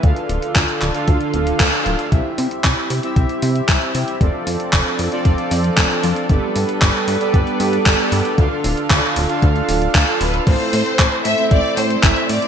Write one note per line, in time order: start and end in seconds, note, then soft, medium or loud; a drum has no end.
0.03 0.13 D2 loud
0.03 2.10 D3 medium
0.03 0.92 D4 medium
0.03 2.10 D4 medium
0.03 0.92 F4 medium
0.03 2.10 F4 medium
0.03 2.10 A4 medium
0.03 0.92 A4 medium
0.03 0.92 F5 medium
0.03 kick loud
0.03 closed hi-hat medium
0.16 closed hi-hat soft
0.29 0.39 D1 medium
0.29 closed hi-hat medium
0.42 closed hi-hat medium
0.55 0.65 D2 medium
0.55 kick loud
0.55 clap loud
0.55 closed hi-hat medium
0.68 closed hi-hat soft
0.82 0.91 D1 medium
0.82 clap medium
0.82 closed hi-hat medium
0.94 2.09 D4 medium
0.94 2.09 F4 medium
0.94 2.09 A4 medium
0.94 2.09 F5 loud
0.94 closed hi-hat medium
1.08 1.17 D2 medium
1.08 kick loud
1.08 closed hi-hat medium
1.21 closed hi-hat soft
1.34 1.53 D1 loud
1.34 closed hi-hat medium
1.47 closed hi-hat medium
1.60 1.69 D2 loud
1.60 kick loud
1.60 clap loud
1.60 closed hi-hat medium
1.73 closed hi-hat soft
1.86 1.96 D1 medium
1.86 closed hi-hat medium
1.99 closed hi-hat medium
2.12 2.22 C2 medium
2.12 3.00 C4 medium
2.12 6.26 C4 medium
2.12 3.00 E4 medium
2.12 4.19 E4 medium
2.12 3.00 G4 medium
2.12 4.19 G4 medium
2.12 3.00 E5 medium
2.12 kick loud
2.12 closed hi-hat medium
2.38 2.48 C3 medium
2.38 open hi-hat loud
2.51 closed hi-hat medium
2.64 2.74 C2 medium
2.64 kick loud
2.64 clap loud
2.64 closed hi-hat medium
2.90 3.00 C3 medium
2.90 open hi-hat loud
3.03 4.18 C4 medium
3.03 4.18 E4 medium
3.03 4.18 G4 medium
3.03 4.18 E5 loud
3.03 closed hi-hat medium
3.16 3.26 C2 medium
3.16 kick loud
3.16 closed hi-hat medium
3.29 closed hi-hat soft
3.42 3.62 C3 loud
3.42 open hi-hat loud
3.56 closed hi-hat medium
3.69 3.78 C2 medium
3.69 kick loud
3.69 clap loud
3.69 closed hi-hat medium
3.82 closed hi-hat soft
3.95 4.04 C3 medium
3.95 open hi-hat loud
4.08 closed hi-hat medium
4.21 4.30 F1 loud
4.21 6.28 F3 medium
4.21 5.09 C4 medium
4.21 10.43 D4 medium
4.21 5.09 F4 medium
4.21 5.09 A4 medium
4.21 10.43 A4 medium
4.21 5.09 D5 medium
4.21 kick loud
4.21 closed hi-hat medium
4.47 4.56 F2 medium
4.47 open hi-hat medium
4.60 closed hi-hat medium
4.73 4.83 F1 medium
4.73 kick loud
4.73 clap loud
4.73 closed hi-hat medium
4.99 5.09 F2 medium
4.99 open hi-hat loud
5.12 6.26 C4 medium
5.12 6.26 F4 medium
5.12 6.26 A4 medium
5.12 6.26 D5 loud
5.12 closed hi-hat medium
5.25 5.35 F1 medium
5.25 kick loud
5.25 closed hi-hat medium
5.38 closed hi-hat soft
5.51 5.70 F2 loud
5.51 open hi-hat loud
5.64 closed hi-hat medium
5.77 5.87 F1 medium
5.77 kick loud
5.77 clap loud
5.77 closed hi-hat medium
5.90 closed hi-hat soft
6.03 6.13 F2 medium
6.03 open hi-hat loud
6.16 closed hi-hat medium
6.29 6.39 G1 loud
6.29 8.36 G3 medium
6.29 7.18 B3 medium
6.29 7.18 G4 medium
6.29 7.18 A4 medium
6.29 8.36 B4 medium
6.29 7.18 D5 medium
6.29 kick loud
6.29 closed hi-hat medium
6.56 6.65 G2 medium
6.56 open hi-hat medium
6.69 closed hi-hat soft
6.82 6.91 G1 medium
6.82 kick loud
6.82 clap loud
6.82 closed hi-hat medium
7.08 7.17 G2 medium
7.08 open hi-hat loud
7.21 8.35 B3 medium
7.21 8.35 G4 medium
7.21 8.35 A4 medium
7.21 8.35 D5 loud
7.21 closed hi-hat medium
7.34 7.43 G1 medium
7.34 kick loud
7.34 closed hi-hat medium
7.47 closed hi-hat soft
7.60 7.79 G2 loud
7.60 open hi-hat loud
7.73 closed hi-hat soft
7.86 7.96 G1 medium
7.86 kick loud
7.86 clap loud
7.86 closed hi-hat medium
7.99 closed hi-hat soft
8.12 8.22 G2 medium
8.12 open hi-hat loud
8.25 closed hi-hat medium
8.38 8.48 D2 loud
8.38 10.45 D3 medium
8.38 9.26 D4 medium
8.38 9.26 F4 medium
8.38 10.45 F4 medium
8.38 9.26 A4 medium
8.38 9.26 F5 medium
8.38 kick loud
8.38 closed hi-hat medium
8.64 8.74 D1 medium
8.64 open hi-hat loud
8.77 closed hi-hat soft
8.90 9.00 D2 medium
8.90 kick loud
8.90 clap loud
8.90 closed hi-hat medium
9.16 9.26 D1 medium
9.16 open hi-hat loud
9.29 10.05 D4 loud
9.29 10.05 F4 medium
9.29 10.05 A4 medium
9.29 10.05 F5 loud
9.29 closed hi-hat soft
9.42 9.62 D2 medium
9.42 kick loud
9.42 closed hi-hat medium
9.56 closed hi-hat soft
9.69 9.88 D1 loud
9.69 open hi-hat loud
9.82 closed hi-hat medium
9.95 10.04 D2 loud
9.95 10.19 A4 medium
9.95 kick loud
9.95 clap loud
9.95 closed hi-hat medium
10.08 10.44 D4 medium
10.08 10.44 F4 medium
10.08 10.44 A4 medium
10.08 10.44 F5 loud
10.08 closed hi-hat soft
10.21 10.40 D1 loud
10.21 10.45 B4 loud
10.21 open hi-hat loud
10.34 closed hi-hat soft
10.47 10.56 A1 loud
10.47 11.35 A3 medium
10.47 11.35 C4 medium
10.47 12.48 C4 medium
10.47 11.35 E4 medium
10.47 12.48 E4 medium
10.47 12.48 A4 medium
10.47 11.35 C5 medium
10.47 11.21 C5 loud
10.47 kick loud
10.47 closed hi-hat medium
10.47 crash loud
10.60 closed hi-hat soft
10.73 10.83 A2 medium
10.73 open hi-hat loud
10.86 closed hi-hat medium
10.99 11.09 A1 medium
10.99 kick loud
10.99 clap loud
10.99 closed hi-hat medium
11.12 closed hi-hat soft
11.25 11.35 A2 medium
11.25 11.49 E5 loud
11.25 open hi-hat loud
11.38 12.48 A3 loud
11.38 12.48 C4 medium
11.38 12.48 E4 medium
11.38 12.48 C5 loud
11.38 closed hi-hat medium
11.51 11.61 A1 medium
11.51 11.76 D5 loud
11.51 kick loud
11.51 closed hi-hat medium
11.77 11.96 A2 loud
11.77 12.03 C5 loud
11.77 open hi-hat loud
11.90 closed hi-hat medium
12.03 12.13 A1 medium
12.03 12.30 E5 loud
12.03 kick loud
12.03 clap loud
12.03 closed hi-hat medium
12.16 closed hi-hat soft
12.29 12.39 A2 medium
12.29 12.48 D5 loud
12.29 open hi-hat loud
12.42 closed hi-hat medium